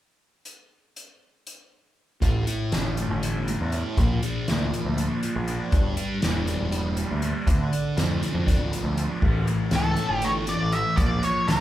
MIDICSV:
0, 0, Header, 1, 5, 480
1, 0, Start_track
1, 0, Tempo, 500835
1, 445, Time_signature, 7, 3, 24, 8
1, 11121, End_track
2, 0, Start_track
2, 0, Title_t, "Lead electric guitar"
2, 0, Program_c, 0, 29
2, 9350, Note_on_c, 0, 69, 74
2, 9819, Note_on_c, 0, 73, 77
2, 9831, Note_off_c, 0, 69, 0
2, 9882, Note_off_c, 0, 73, 0
2, 10053, Note_on_c, 0, 74, 76
2, 10281, Note_on_c, 0, 76, 92
2, 10295, Note_off_c, 0, 74, 0
2, 10506, Note_on_c, 0, 74, 85
2, 10530, Note_off_c, 0, 76, 0
2, 10762, Note_off_c, 0, 74, 0
2, 10771, Note_on_c, 0, 73, 77
2, 10997, Note_on_c, 0, 70, 74
2, 11014, Note_off_c, 0, 73, 0
2, 11121, Note_off_c, 0, 70, 0
2, 11121, End_track
3, 0, Start_track
3, 0, Title_t, "Distorted electric guitar"
3, 0, Program_c, 1, 30
3, 2118, Note_on_c, 1, 45, 65
3, 2366, Note_on_c, 1, 64, 63
3, 2614, Note_on_c, 1, 61, 56
3, 2866, Note_on_c, 1, 57, 62
3, 3088, Note_off_c, 1, 64, 0
3, 3099, Note_on_c, 1, 64, 65
3, 3326, Note_off_c, 1, 45, 0
3, 3338, Note_off_c, 1, 57, 0
3, 3349, Note_on_c, 1, 57, 68
3, 3569, Note_off_c, 1, 64, 0
3, 3581, Note_on_c, 1, 64, 69
3, 3812, Note_on_c, 1, 46, 71
3, 3813, Note_off_c, 1, 61, 0
3, 3816, Note_off_c, 1, 64, 0
3, 3820, Note_off_c, 1, 57, 0
3, 4056, Note_on_c, 1, 62, 66
3, 4301, Note_on_c, 1, 58, 66
3, 4542, Note_on_c, 1, 53, 58
3, 4784, Note_off_c, 1, 62, 0
3, 4788, Note_on_c, 1, 62, 72
3, 5011, Note_off_c, 1, 46, 0
3, 5013, Note_off_c, 1, 53, 0
3, 5025, Note_on_c, 1, 53, 70
3, 5255, Note_off_c, 1, 62, 0
3, 5259, Note_on_c, 1, 62, 65
3, 5494, Note_on_c, 1, 43, 65
3, 5495, Note_off_c, 1, 58, 0
3, 5497, Note_off_c, 1, 53, 0
3, 5716, Note_off_c, 1, 62, 0
3, 5720, Note_on_c, 1, 62, 66
3, 5950, Note_on_c, 1, 58, 63
3, 6211, Note_on_c, 1, 55, 57
3, 6424, Note_off_c, 1, 62, 0
3, 6435, Note_on_c, 1, 62, 72
3, 6679, Note_off_c, 1, 55, 0
3, 6690, Note_off_c, 1, 43, 0
3, 6691, Note_on_c, 1, 55, 67
3, 6927, Note_off_c, 1, 62, 0
3, 6938, Note_on_c, 1, 62, 72
3, 7158, Note_off_c, 1, 58, 0
3, 7167, Note_on_c, 1, 50, 73
3, 7168, Note_off_c, 1, 55, 0
3, 7173, Note_off_c, 1, 62, 0
3, 7395, Note_on_c, 1, 62, 61
3, 7629, Note_on_c, 1, 57, 63
3, 7876, Note_on_c, 1, 53, 58
3, 8102, Note_off_c, 1, 62, 0
3, 8113, Note_on_c, 1, 62, 73
3, 8365, Note_off_c, 1, 50, 0
3, 8367, Note_off_c, 1, 53, 0
3, 8379, Note_on_c, 1, 53, 58
3, 8600, Note_off_c, 1, 62, 0
3, 8612, Note_on_c, 1, 62, 70
3, 8836, Note_off_c, 1, 57, 0
3, 8836, Note_on_c, 1, 45, 81
3, 8848, Note_off_c, 1, 53, 0
3, 8848, Note_off_c, 1, 62, 0
3, 8852, Note_on_c, 1, 52, 85
3, 8859, Note_on_c, 1, 57, 95
3, 9065, Note_off_c, 1, 57, 0
3, 9076, Note_on_c, 1, 57, 57
3, 9093, Note_off_c, 1, 52, 0
3, 9105, Note_on_c, 1, 52, 56
3, 9307, Note_off_c, 1, 45, 0
3, 9316, Note_off_c, 1, 52, 0
3, 9318, Note_on_c, 1, 45, 80
3, 9328, Note_on_c, 1, 52, 84
3, 9333, Note_off_c, 1, 57, 0
3, 9345, Note_on_c, 1, 57, 80
3, 9543, Note_off_c, 1, 57, 0
3, 9554, Note_on_c, 1, 57, 61
3, 9573, Note_off_c, 1, 52, 0
3, 9585, Note_on_c, 1, 52, 47
3, 9801, Note_off_c, 1, 45, 0
3, 10030, Note_off_c, 1, 57, 0
3, 10041, Note_on_c, 1, 57, 59
3, 10054, Note_off_c, 1, 52, 0
3, 10066, Note_on_c, 1, 52, 58
3, 10281, Note_on_c, 1, 45, 75
3, 10285, Note_off_c, 1, 52, 0
3, 10296, Note_on_c, 1, 52, 70
3, 10298, Note_off_c, 1, 57, 0
3, 10309, Note_on_c, 1, 57, 67
3, 10508, Note_off_c, 1, 45, 0
3, 10516, Note_off_c, 1, 52, 0
3, 10522, Note_off_c, 1, 57, 0
3, 10529, Note_on_c, 1, 46, 77
3, 10542, Note_on_c, 1, 53, 87
3, 10556, Note_on_c, 1, 58, 98
3, 10768, Note_off_c, 1, 58, 0
3, 10772, Note_on_c, 1, 58, 58
3, 10786, Note_off_c, 1, 53, 0
3, 10798, Note_on_c, 1, 53, 57
3, 10980, Note_off_c, 1, 46, 0
3, 10991, Note_on_c, 1, 46, 85
3, 10992, Note_off_c, 1, 53, 0
3, 11004, Note_on_c, 1, 53, 81
3, 11010, Note_off_c, 1, 58, 0
3, 11013, Note_on_c, 1, 58, 84
3, 11121, Note_off_c, 1, 46, 0
3, 11121, Note_off_c, 1, 53, 0
3, 11121, Note_off_c, 1, 58, 0
3, 11121, End_track
4, 0, Start_track
4, 0, Title_t, "Picked electric bass"
4, 0, Program_c, 2, 34
4, 2128, Note_on_c, 2, 33, 72
4, 2336, Note_off_c, 2, 33, 0
4, 2607, Note_on_c, 2, 31, 86
4, 2920, Note_off_c, 2, 31, 0
4, 2975, Note_on_c, 2, 31, 91
4, 3388, Note_off_c, 2, 31, 0
4, 3459, Note_on_c, 2, 40, 82
4, 3663, Note_off_c, 2, 40, 0
4, 3810, Note_on_c, 2, 34, 92
4, 4018, Note_off_c, 2, 34, 0
4, 4297, Note_on_c, 2, 38, 82
4, 4502, Note_off_c, 2, 38, 0
4, 4652, Note_on_c, 2, 38, 77
4, 4859, Note_off_c, 2, 38, 0
4, 5136, Note_on_c, 2, 34, 79
4, 5341, Note_off_c, 2, 34, 0
4, 5488, Note_on_c, 2, 31, 77
4, 5696, Note_off_c, 2, 31, 0
4, 5971, Note_on_c, 2, 28, 78
4, 6281, Note_off_c, 2, 28, 0
4, 6331, Note_on_c, 2, 28, 80
4, 6744, Note_off_c, 2, 28, 0
4, 6818, Note_on_c, 2, 38, 69
4, 7021, Note_off_c, 2, 38, 0
4, 7158, Note_on_c, 2, 38, 91
4, 7369, Note_off_c, 2, 38, 0
4, 7641, Note_on_c, 2, 41, 84
4, 7850, Note_off_c, 2, 41, 0
4, 7996, Note_on_c, 2, 41, 79
4, 8207, Note_off_c, 2, 41, 0
4, 8471, Note_on_c, 2, 38, 73
4, 8684, Note_off_c, 2, 38, 0
4, 8844, Note_on_c, 2, 33, 81
4, 9052, Note_off_c, 2, 33, 0
4, 9315, Note_on_c, 2, 37, 82
4, 9526, Note_off_c, 2, 37, 0
4, 9671, Note_on_c, 2, 31, 69
4, 10091, Note_off_c, 2, 31, 0
4, 10172, Note_on_c, 2, 33, 69
4, 10376, Note_off_c, 2, 33, 0
4, 10513, Note_on_c, 2, 34, 81
4, 10725, Note_off_c, 2, 34, 0
4, 11006, Note_on_c, 2, 38, 77
4, 11121, Note_off_c, 2, 38, 0
4, 11121, End_track
5, 0, Start_track
5, 0, Title_t, "Drums"
5, 434, Note_on_c, 9, 42, 52
5, 530, Note_off_c, 9, 42, 0
5, 924, Note_on_c, 9, 42, 52
5, 1020, Note_off_c, 9, 42, 0
5, 1406, Note_on_c, 9, 42, 54
5, 1502, Note_off_c, 9, 42, 0
5, 2126, Note_on_c, 9, 36, 95
5, 2128, Note_on_c, 9, 42, 74
5, 2222, Note_off_c, 9, 36, 0
5, 2224, Note_off_c, 9, 42, 0
5, 2367, Note_on_c, 9, 42, 61
5, 2463, Note_off_c, 9, 42, 0
5, 2608, Note_on_c, 9, 42, 75
5, 2611, Note_on_c, 9, 38, 106
5, 2704, Note_off_c, 9, 42, 0
5, 2707, Note_off_c, 9, 38, 0
5, 2849, Note_on_c, 9, 42, 47
5, 2944, Note_off_c, 9, 42, 0
5, 3094, Note_on_c, 9, 42, 81
5, 3190, Note_off_c, 9, 42, 0
5, 3332, Note_on_c, 9, 42, 58
5, 3428, Note_off_c, 9, 42, 0
5, 3567, Note_on_c, 9, 42, 47
5, 3663, Note_off_c, 9, 42, 0
5, 3809, Note_on_c, 9, 36, 98
5, 3809, Note_on_c, 9, 42, 72
5, 3905, Note_off_c, 9, 36, 0
5, 3905, Note_off_c, 9, 42, 0
5, 4050, Note_on_c, 9, 42, 62
5, 4146, Note_off_c, 9, 42, 0
5, 4292, Note_on_c, 9, 42, 71
5, 4295, Note_on_c, 9, 38, 94
5, 4388, Note_off_c, 9, 42, 0
5, 4391, Note_off_c, 9, 38, 0
5, 4538, Note_on_c, 9, 42, 42
5, 4634, Note_off_c, 9, 42, 0
5, 4771, Note_on_c, 9, 42, 62
5, 4867, Note_off_c, 9, 42, 0
5, 5010, Note_on_c, 9, 42, 52
5, 5105, Note_off_c, 9, 42, 0
5, 5248, Note_on_c, 9, 42, 50
5, 5344, Note_off_c, 9, 42, 0
5, 5484, Note_on_c, 9, 42, 78
5, 5487, Note_on_c, 9, 36, 108
5, 5580, Note_off_c, 9, 42, 0
5, 5583, Note_off_c, 9, 36, 0
5, 5721, Note_on_c, 9, 42, 59
5, 5817, Note_off_c, 9, 42, 0
5, 5964, Note_on_c, 9, 42, 77
5, 5967, Note_on_c, 9, 38, 106
5, 6060, Note_off_c, 9, 42, 0
5, 6063, Note_off_c, 9, 38, 0
5, 6204, Note_on_c, 9, 42, 51
5, 6300, Note_off_c, 9, 42, 0
5, 6442, Note_on_c, 9, 42, 73
5, 6538, Note_off_c, 9, 42, 0
5, 6678, Note_on_c, 9, 42, 60
5, 6774, Note_off_c, 9, 42, 0
5, 6920, Note_on_c, 9, 42, 53
5, 7016, Note_off_c, 9, 42, 0
5, 7161, Note_on_c, 9, 36, 101
5, 7163, Note_on_c, 9, 42, 90
5, 7257, Note_off_c, 9, 36, 0
5, 7259, Note_off_c, 9, 42, 0
5, 7407, Note_on_c, 9, 42, 68
5, 7502, Note_off_c, 9, 42, 0
5, 7643, Note_on_c, 9, 42, 77
5, 7646, Note_on_c, 9, 38, 106
5, 7739, Note_off_c, 9, 42, 0
5, 7742, Note_off_c, 9, 38, 0
5, 7883, Note_on_c, 9, 42, 51
5, 7979, Note_off_c, 9, 42, 0
5, 8123, Note_on_c, 9, 36, 93
5, 8127, Note_on_c, 9, 42, 82
5, 8218, Note_off_c, 9, 36, 0
5, 8223, Note_off_c, 9, 42, 0
5, 8367, Note_on_c, 9, 42, 59
5, 8463, Note_off_c, 9, 42, 0
5, 8601, Note_on_c, 9, 42, 55
5, 8697, Note_off_c, 9, 42, 0
5, 8839, Note_on_c, 9, 36, 104
5, 8841, Note_on_c, 9, 49, 86
5, 8935, Note_off_c, 9, 36, 0
5, 8937, Note_off_c, 9, 49, 0
5, 9080, Note_on_c, 9, 42, 52
5, 9176, Note_off_c, 9, 42, 0
5, 9307, Note_on_c, 9, 42, 71
5, 9309, Note_on_c, 9, 38, 108
5, 9402, Note_off_c, 9, 42, 0
5, 9405, Note_off_c, 9, 38, 0
5, 9549, Note_on_c, 9, 42, 52
5, 9645, Note_off_c, 9, 42, 0
5, 9792, Note_on_c, 9, 42, 69
5, 9888, Note_off_c, 9, 42, 0
5, 10033, Note_on_c, 9, 42, 62
5, 10129, Note_off_c, 9, 42, 0
5, 10277, Note_on_c, 9, 42, 48
5, 10373, Note_off_c, 9, 42, 0
5, 10518, Note_on_c, 9, 42, 86
5, 10519, Note_on_c, 9, 36, 104
5, 10614, Note_off_c, 9, 42, 0
5, 10615, Note_off_c, 9, 36, 0
5, 10761, Note_on_c, 9, 42, 70
5, 10857, Note_off_c, 9, 42, 0
5, 11005, Note_on_c, 9, 42, 77
5, 11008, Note_on_c, 9, 38, 108
5, 11101, Note_off_c, 9, 42, 0
5, 11103, Note_off_c, 9, 38, 0
5, 11121, End_track
0, 0, End_of_file